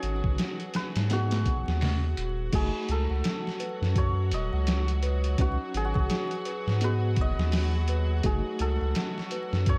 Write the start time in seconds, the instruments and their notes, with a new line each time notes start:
Already playing: string section F#3 F#4, felt piano C#4 D#4 F#4 B4, santur G#4 C#5
0.03 analog synth bass G#1, closed hi-hat
0.24 analog synth bass G#1, kick
0.38 snare, closed hi-hat
0.60 closed hi-hat
0.74 santur B4, snare, closed hi-hat
0.96 analog synth bass G#2, snare, closed hi-hat
1.10 felt piano B3 D#4 F#4 G#4, santur F#4, snare, closed hi-hat
1.31 snare, closed hi-hat
1.45 analog synth bass B1, kick, closed hi-hat
1.68 analog synth bass D#2, snare
1.81 snare, open hi-hat
2.17 analog synth bass D#1, closed hi-hat
2.52 analog synth bass F#1, string section F#3 F#4, felt piano A3 D#4 F#4, music box F#4, santur G#4, kick, closed hi-hat, crash
2.89 analog synth bass C#2, santur A4, closed hi-hat
3.10 analog synth bass C#2, music box F#5
3.24 snare, closed hi-hat
3.47 snare
3.60 music box B4, closed hi-hat
3.82 analog synth bass F#2, snare
3.96 music box F#4, santur C#5, kick, closed hi-hat
4.31 analog synth bass D#1, santur D#5, closed hi-hat
4.53 analog synth bass C#2, music box F#5
4.67 snare, closed hi-hat
4.88 closed hi-hat
5.03 music box B4, closed hi-hat
5.24 closed hi-hat
5.38 analog synth bass C#2, felt piano C#4 D#4 F#4 B4, music box F#4, santur F#4, kick, closed hi-hat
5.74 analog synth bass G#1, santur G#4, closed hi-hat
5.85 santur F#4
5.94 analog synth bass G#1, santur G#4, music box F#5, kick
6.10 snare, closed hi-hat
6.31 closed hi-hat
6.45 music box B4, closed hi-hat
6.67 analog synth bass G#2, snare
6.81 felt piano B3 D#4 F#4 G#4, music box F#4, santur B4, closed hi-hat
7.16 analog synth bass F#1, kick, closed hi-hat
7.21 santur D#5
7.39 analog synth bass D#2, music box F#5, snare
7.52 snare, open hi-hat
7.88 music box B4, closed hi-hat
8.23 analog synth bass F#1, felt piano A3 D#4 F#4, music box F#4, santur G#4, kick, closed hi-hat
8.59 analog synth bass C#2, santur A4, closed hi-hat
8.81 analog synth bass C#2, music box F#5
8.95 snare, closed hi-hat
9.18 snare
9.31 music box B4, closed hi-hat
9.53 analog synth bass F#2, snare
9.66 music box F#4, santur C#5, kick, closed hi-hat